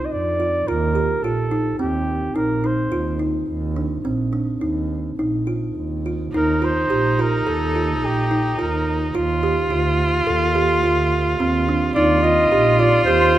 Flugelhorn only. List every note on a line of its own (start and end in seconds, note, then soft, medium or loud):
0.05 0.13 D#5 medium
0.12 0.69 D5 medium
0.68 1.24 A#4 medium
1.23 1.79 A4 medium
1.79 2.37 G4 medium
2.35 2.67 A#4 medium
2.66 3.21 C5 medium
6.36 6.66 A#4 medium
6.64 7.23 C5 medium
7.21 7.51 A#4 medium
7.49 8.07 A4 medium
8.05 8.60 G4 medium
8.59 9.01 A#4 medium
11.95 12.24 D5 medium
12.23 12.80 D#5 loud
12.79 13.04 D5 medium
13.05 13.38 C5 medium